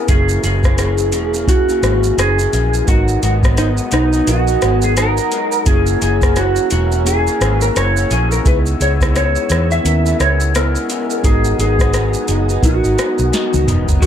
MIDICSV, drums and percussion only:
0, 0, Header, 1, 2, 480
1, 0, Start_track
1, 0, Key_signature, 5, "minor"
1, 0, Tempo, 696864
1, 61, Time_signature, 4, 2, 24, 8
1, 9687, End_track
2, 0, Start_track
2, 0, Title_t, "Drums"
2, 58, Note_on_c, 9, 42, 69
2, 58, Note_on_c, 9, 82, 62
2, 60, Note_on_c, 9, 36, 95
2, 127, Note_off_c, 9, 42, 0
2, 127, Note_off_c, 9, 82, 0
2, 129, Note_off_c, 9, 36, 0
2, 200, Note_on_c, 9, 82, 52
2, 268, Note_off_c, 9, 82, 0
2, 301, Note_on_c, 9, 42, 47
2, 301, Note_on_c, 9, 82, 52
2, 370, Note_off_c, 9, 42, 0
2, 370, Note_off_c, 9, 82, 0
2, 440, Note_on_c, 9, 36, 88
2, 440, Note_on_c, 9, 82, 42
2, 449, Note_on_c, 9, 37, 83
2, 508, Note_off_c, 9, 36, 0
2, 509, Note_off_c, 9, 82, 0
2, 518, Note_off_c, 9, 37, 0
2, 538, Note_on_c, 9, 42, 67
2, 538, Note_on_c, 9, 82, 63
2, 542, Note_on_c, 9, 37, 74
2, 607, Note_off_c, 9, 42, 0
2, 607, Note_off_c, 9, 82, 0
2, 611, Note_off_c, 9, 37, 0
2, 675, Note_on_c, 9, 82, 53
2, 744, Note_off_c, 9, 82, 0
2, 774, Note_on_c, 9, 42, 51
2, 774, Note_on_c, 9, 82, 57
2, 843, Note_off_c, 9, 42, 0
2, 843, Note_off_c, 9, 82, 0
2, 924, Note_on_c, 9, 82, 50
2, 992, Note_off_c, 9, 82, 0
2, 1017, Note_on_c, 9, 36, 94
2, 1024, Note_on_c, 9, 42, 77
2, 1024, Note_on_c, 9, 82, 73
2, 1086, Note_off_c, 9, 36, 0
2, 1092, Note_off_c, 9, 42, 0
2, 1092, Note_off_c, 9, 82, 0
2, 1165, Note_on_c, 9, 82, 49
2, 1234, Note_off_c, 9, 82, 0
2, 1262, Note_on_c, 9, 42, 44
2, 1262, Note_on_c, 9, 82, 47
2, 1265, Note_on_c, 9, 37, 82
2, 1331, Note_off_c, 9, 42, 0
2, 1331, Note_off_c, 9, 82, 0
2, 1334, Note_off_c, 9, 37, 0
2, 1402, Note_on_c, 9, 82, 52
2, 1471, Note_off_c, 9, 82, 0
2, 1506, Note_on_c, 9, 42, 69
2, 1506, Note_on_c, 9, 82, 67
2, 1511, Note_on_c, 9, 37, 87
2, 1574, Note_off_c, 9, 42, 0
2, 1574, Note_off_c, 9, 82, 0
2, 1580, Note_off_c, 9, 37, 0
2, 1646, Note_on_c, 9, 82, 53
2, 1715, Note_off_c, 9, 82, 0
2, 1745, Note_on_c, 9, 42, 51
2, 1745, Note_on_c, 9, 82, 48
2, 1814, Note_off_c, 9, 42, 0
2, 1814, Note_off_c, 9, 82, 0
2, 1886, Note_on_c, 9, 82, 48
2, 1955, Note_off_c, 9, 82, 0
2, 1983, Note_on_c, 9, 36, 101
2, 1983, Note_on_c, 9, 42, 61
2, 1983, Note_on_c, 9, 82, 66
2, 2052, Note_off_c, 9, 36, 0
2, 2052, Note_off_c, 9, 42, 0
2, 2052, Note_off_c, 9, 82, 0
2, 2123, Note_on_c, 9, 82, 46
2, 2192, Note_off_c, 9, 82, 0
2, 2224, Note_on_c, 9, 42, 54
2, 2224, Note_on_c, 9, 82, 50
2, 2292, Note_off_c, 9, 42, 0
2, 2292, Note_off_c, 9, 82, 0
2, 2362, Note_on_c, 9, 36, 86
2, 2367, Note_on_c, 9, 82, 45
2, 2376, Note_on_c, 9, 37, 82
2, 2431, Note_off_c, 9, 36, 0
2, 2436, Note_off_c, 9, 82, 0
2, 2445, Note_off_c, 9, 37, 0
2, 2462, Note_on_c, 9, 42, 66
2, 2462, Note_on_c, 9, 82, 70
2, 2466, Note_on_c, 9, 37, 75
2, 2531, Note_off_c, 9, 42, 0
2, 2531, Note_off_c, 9, 82, 0
2, 2535, Note_off_c, 9, 37, 0
2, 2600, Note_on_c, 9, 82, 53
2, 2668, Note_off_c, 9, 82, 0
2, 2696, Note_on_c, 9, 42, 57
2, 2696, Note_on_c, 9, 82, 59
2, 2711, Note_on_c, 9, 37, 83
2, 2765, Note_off_c, 9, 42, 0
2, 2765, Note_off_c, 9, 82, 0
2, 2780, Note_off_c, 9, 37, 0
2, 2844, Note_on_c, 9, 82, 47
2, 2913, Note_off_c, 9, 82, 0
2, 2944, Note_on_c, 9, 42, 70
2, 2944, Note_on_c, 9, 82, 69
2, 3013, Note_off_c, 9, 42, 0
2, 3013, Note_off_c, 9, 82, 0
2, 3083, Note_on_c, 9, 82, 49
2, 3152, Note_off_c, 9, 82, 0
2, 3182, Note_on_c, 9, 42, 46
2, 3182, Note_on_c, 9, 82, 46
2, 3184, Note_on_c, 9, 37, 78
2, 3251, Note_off_c, 9, 42, 0
2, 3251, Note_off_c, 9, 82, 0
2, 3253, Note_off_c, 9, 37, 0
2, 3320, Note_on_c, 9, 82, 53
2, 3389, Note_off_c, 9, 82, 0
2, 3422, Note_on_c, 9, 42, 69
2, 3422, Note_on_c, 9, 82, 69
2, 3427, Note_on_c, 9, 37, 79
2, 3491, Note_off_c, 9, 42, 0
2, 3491, Note_off_c, 9, 82, 0
2, 3496, Note_off_c, 9, 37, 0
2, 3564, Note_on_c, 9, 82, 50
2, 3633, Note_off_c, 9, 82, 0
2, 3662, Note_on_c, 9, 42, 47
2, 3662, Note_on_c, 9, 82, 50
2, 3731, Note_off_c, 9, 42, 0
2, 3731, Note_off_c, 9, 82, 0
2, 3801, Note_on_c, 9, 82, 53
2, 3870, Note_off_c, 9, 82, 0
2, 3900, Note_on_c, 9, 42, 67
2, 3900, Note_on_c, 9, 82, 72
2, 3901, Note_on_c, 9, 36, 98
2, 3969, Note_off_c, 9, 42, 0
2, 3969, Note_off_c, 9, 82, 0
2, 3970, Note_off_c, 9, 36, 0
2, 4041, Note_on_c, 9, 82, 49
2, 4110, Note_off_c, 9, 82, 0
2, 4145, Note_on_c, 9, 42, 54
2, 4145, Note_on_c, 9, 82, 56
2, 4214, Note_off_c, 9, 42, 0
2, 4214, Note_off_c, 9, 82, 0
2, 4282, Note_on_c, 9, 36, 85
2, 4284, Note_on_c, 9, 82, 46
2, 4293, Note_on_c, 9, 37, 86
2, 4351, Note_off_c, 9, 36, 0
2, 4353, Note_off_c, 9, 82, 0
2, 4361, Note_off_c, 9, 37, 0
2, 4381, Note_on_c, 9, 42, 63
2, 4381, Note_on_c, 9, 82, 69
2, 4385, Note_on_c, 9, 37, 71
2, 4450, Note_off_c, 9, 42, 0
2, 4450, Note_off_c, 9, 82, 0
2, 4454, Note_off_c, 9, 37, 0
2, 4520, Note_on_c, 9, 82, 47
2, 4588, Note_off_c, 9, 82, 0
2, 4618, Note_on_c, 9, 42, 60
2, 4618, Note_on_c, 9, 82, 57
2, 4687, Note_off_c, 9, 42, 0
2, 4687, Note_off_c, 9, 82, 0
2, 4766, Note_on_c, 9, 82, 43
2, 4835, Note_off_c, 9, 82, 0
2, 4867, Note_on_c, 9, 42, 76
2, 4867, Note_on_c, 9, 82, 70
2, 4936, Note_off_c, 9, 42, 0
2, 4936, Note_off_c, 9, 82, 0
2, 5009, Note_on_c, 9, 82, 48
2, 5078, Note_off_c, 9, 82, 0
2, 5106, Note_on_c, 9, 42, 48
2, 5106, Note_on_c, 9, 82, 48
2, 5109, Note_on_c, 9, 37, 84
2, 5175, Note_off_c, 9, 42, 0
2, 5175, Note_off_c, 9, 82, 0
2, 5178, Note_off_c, 9, 37, 0
2, 5244, Note_on_c, 9, 82, 61
2, 5313, Note_off_c, 9, 82, 0
2, 5347, Note_on_c, 9, 42, 64
2, 5347, Note_on_c, 9, 82, 67
2, 5352, Note_on_c, 9, 37, 83
2, 5415, Note_off_c, 9, 42, 0
2, 5415, Note_off_c, 9, 82, 0
2, 5421, Note_off_c, 9, 37, 0
2, 5488, Note_on_c, 9, 82, 52
2, 5556, Note_off_c, 9, 82, 0
2, 5585, Note_on_c, 9, 42, 49
2, 5585, Note_on_c, 9, 82, 49
2, 5654, Note_off_c, 9, 42, 0
2, 5654, Note_off_c, 9, 82, 0
2, 5729, Note_on_c, 9, 82, 50
2, 5798, Note_off_c, 9, 82, 0
2, 5824, Note_on_c, 9, 36, 98
2, 5826, Note_on_c, 9, 42, 63
2, 5826, Note_on_c, 9, 82, 57
2, 5893, Note_off_c, 9, 36, 0
2, 5895, Note_off_c, 9, 42, 0
2, 5895, Note_off_c, 9, 82, 0
2, 5965, Note_on_c, 9, 82, 50
2, 6034, Note_off_c, 9, 82, 0
2, 6068, Note_on_c, 9, 42, 50
2, 6068, Note_on_c, 9, 82, 54
2, 6137, Note_off_c, 9, 42, 0
2, 6137, Note_off_c, 9, 82, 0
2, 6205, Note_on_c, 9, 36, 81
2, 6208, Note_on_c, 9, 82, 43
2, 6217, Note_on_c, 9, 37, 87
2, 6274, Note_off_c, 9, 36, 0
2, 6277, Note_off_c, 9, 82, 0
2, 6286, Note_off_c, 9, 37, 0
2, 6307, Note_on_c, 9, 42, 65
2, 6307, Note_on_c, 9, 82, 63
2, 6311, Note_on_c, 9, 37, 79
2, 6376, Note_off_c, 9, 42, 0
2, 6376, Note_off_c, 9, 82, 0
2, 6380, Note_off_c, 9, 37, 0
2, 6444, Note_on_c, 9, 82, 48
2, 6513, Note_off_c, 9, 82, 0
2, 6541, Note_on_c, 9, 42, 58
2, 6541, Note_on_c, 9, 82, 59
2, 6555, Note_on_c, 9, 37, 81
2, 6610, Note_off_c, 9, 42, 0
2, 6610, Note_off_c, 9, 82, 0
2, 6624, Note_off_c, 9, 37, 0
2, 6690, Note_on_c, 9, 82, 46
2, 6758, Note_off_c, 9, 82, 0
2, 6789, Note_on_c, 9, 42, 76
2, 6789, Note_on_c, 9, 82, 68
2, 6857, Note_off_c, 9, 42, 0
2, 6857, Note_off_c, 9, 82, 0
2, 6929, Note_on_c, 9, 82, 49
2, 6998, Note_off_c, 9, 82, 0
2, 7027, Note_on_c, 9, 42, 46
2, 7027, Note_on_c, 9, 82, 45
2, 7030, Note_on_c, 9, 37, 72
2, 7096, Note_off_c, 9, 42, 0
2, 7096, Note_off_c, 9, 82, 0
2, 7099, Note_off_c, 9, 37, 0
2, 7166, Note_on_c, 9, 82, 54
2, 7234, Note_off_c, 9, 82, 0
2, 7267, Note_on_c, 9, 42, 64
2, 7267, Note_on_c, 9, 82, 67
2, 7272, Note_on_c, 9, 37, 80
2, 7336, Note_off_c, 9, 42, 0
2, 7336, Note_off_c, 9, 82, 0
2, 7341, Note_off_c, 9, 37, 0
2, 7408, Note_on_c, 9, 82, 48
2, 7477, Note_off_c, 9, 82, 0
2, 7506, Note_on_c, 9, 42, 52
2, 7506, Note_on_c, 9, 82, 51
2, 7575, Note_off_c, 9, 42, 0
2, 7575, Note_off_c, 9, 82, 0
2, 7648, Note_on_c, 9, 82, 53
2, 7717, Note_off_c, 9, 82, 0
2, 7744, Note_on_c, 9, 36, 101
2, 7745, Note_on_c, 9, 42, 65
2, 7745, Note_on_c, 9, 82, 61
2, 7812, Note_off_c, 9, 36, 0
2, 7814, Note_off_c, 9, 42, 0
2, 7814, Note_off_c, 9, 82, 0
2, 7884, Note_on_c, 9, 82, 49
2, 7953, Note_off_c, 9, 82, 0
2, 7987, Note_on_c, 9, 42, 51
2, 7987, Note_on_c, 9, 82, 51
2, 8056, Note_off_c, 9, 42, 0
2, 8056, Note_off_c, 9, 82, 0
2, 8123, Note_on_c, 9, 36, 89
2, 8127, Note_on_c, 9, 82, 47
2, 8136, Note_on_c, 9, 37, 85
2, 8192, Note_off_c, 9, 36, 0
2, 8196, Note_off_c, 9, 82, 0
2, 8205, Note_off_c, 9, 37, 0
2, 8221, Note_on_c, 9, 42, 70
2, 8221, Note_on_c, 9, 82, 64
2, 8225, Note_on_c, 9, 37, 77
2, 8290, Note_off_c, 9, 42, 0
2, 8290, Note_off_c, 9, 82, 0
2, 8294, Note_off_c, 9, 37, 0
2, 8360, Note_on_c, 9, 82, 51
2, 8428, Note_off_c, 9, 82, 0
2, 8459, Note_on_c, 9, 42, 58
2, 8459, Note_on_c, 9, 82, 58
2, 8528, Note_off_c, 9, 42, 0
2, 8528, Note_off_c, 9, 82, 0
2, 8605, Note_on_c, 9, 82, 50
2, 8674, Note_off_c, 9, 82, 0
2, 8698, Note_on_c, 9, 36, 94
2, 8703, Note_on_c, 9, 42, 73
2, 8703, Note_on_c, 9, 82, 71
2, 8766, Note_off_c, 9, 36, 0
2, 8772, Note_off_c, 9, 42, 0
2, 8772, Note_off_c, 9, 82, 0
2, 8846, Note_on_c, 9, 82, 45
2, 8915, Note_off_c, 9, 82, 0
2, 8944, Note_on_c, 9, 42, 47
2, 8944, Note_on_c, 9, 82, 48
2, 8947, Note_on_c, 9, 37, 77
2, 9013, Note_off_c, 9, 42, 0
2, 9013, Note_off_c, 9, 82, 0
2, 9016, Note_off_c, 9, 37, 0
2, 9082, Note_on_c, 9, 82, 52
2, 9151, Note_off_c, 9, 82, 0
2, 9185, Note_on_c, 9, 42, 60
2, 9185, Note_on_c, 9, 82, 68
2, 9188, Note_on_c, 9, 38, 51
2, 9253, Note_off_c, 9, 42, 0
2, 9253, Note_off_c, 9, 82, 0
2, 9257, Note_off_c, 9, 38, 0
2, 9324, Note_on_c, 9, 48, 56
2, 9324, Note_on_c, 9, 82, 55
2, 9393, Note_off_c, 9, 48, 0
2, 9393, Note_off_c, 9, 82, 0
2, 9421, Note_on_c, 9, 45, 87
2, 9424, Note_on_c, 9, 42, 51
2, 9424, Note_on_c, 9, 82, 51
2, 9490, Note_off_c, 9, 45, 0
2, 9493, Note_off_c, 9, 42, 0
2, 9493, Note_off_c, 9, 82, 0
2, 9565, Note_on_c, 9, 82, 54
2, 9566, Note_on_c, 9, 43, 93
2, 9634, Note_off_c, 9, 82, 0
2, 9635, Note_off_c, 9, 43, 0
2, 9660, Note_on_c, 9, 36, 87
2, 9661, Note_on_c, 9, 42, 61
2, 9661, Note_on_c, 9, 82, 65
2, 9687, Note_off_c, 9, 36, 0
2, 9687, Note_off_c, 9, 42, 0
2, 9687, Note_off_c, 9, 82, 0
2, 9687, End_track
0, 0, End_of_file